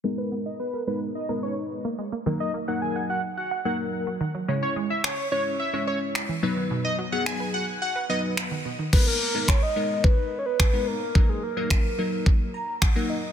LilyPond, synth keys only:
\new Staff \with { instrumentName = "Synth keys" } { \time 4/4 \key gis \minor \tempo 4 = 108 << { r1 | r1 | r1 | r1 |
r1 | r2 r8 ais''8 fis''8 dis''8 | } \\ { <gis b dis' ais'>8. r8. <gis b dis' ais'>8 r16 <gis b dis' b'>4 r8. | <fis ais dis' ais'>8 r16 <fis ais dis' ais'>4 r8. <fis ais dis' ais'>8. r8. | <gis cis' e' cis''>8. r8. <gis cis' e' cis''>8 r16 <gis cis' e' cis''>4 r16 <fis b dis' b'>8~ | <fis b dis' b'>8 r16 <fis b dis' gis'>4 r8. <fis b dis' b'>8. r8. |
<gis b dis' ais'>8 r16 <gis b dis' ais'>8 r16 <gis b dis' ais'>4 r8. <gis b dis' ais'>8 r16 | <fis ais dis' ais'>8 r16 <fis ais dis' ais'>8 r16 <fis ais dis' ais'>4 r8. <fis ais dis' ais'>8 r16 | } >> }